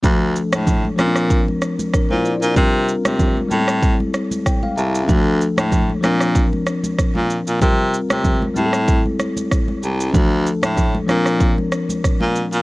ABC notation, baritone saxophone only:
X:1
M:4/4
L:1/16
Q:"Swing 16ths" 1/4=95
K:Dm
V:1 name="Baritone saxophone" clef=bass
D,,3 A,,3 B,,4 z3 B,,2 B,, | C,3 C,3 A,,4 z4 C,,2 | D,,3 A,,3 B,,4 z3 B,,2 B,, | C,3 C,3 A,,4 z4 C,,2 |
D,,3 A,,3 B,,4 z3 B,,2 B,, |]